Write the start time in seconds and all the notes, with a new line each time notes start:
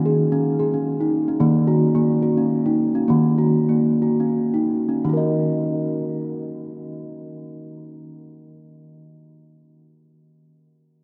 Already playing: D#3
0.06 G#4
0.32 C#4
0.59 G#4
0.74 C#4
1.01 D#4
1.28 C#4
1.40 D#3 A#3
1.67 F#4
1.95 A#3
2.23 F#4
2.37 C#4
2.66 D#4
2.95 C#4
3.08 D#3 A#3
3.38 F#4
3.69 A#3
4.02 F#4
4.20 C#4
4.54 D#4
4.89 C#4
5.05 D#3 D#4
5.09 F#4
5.13 A#4 D#5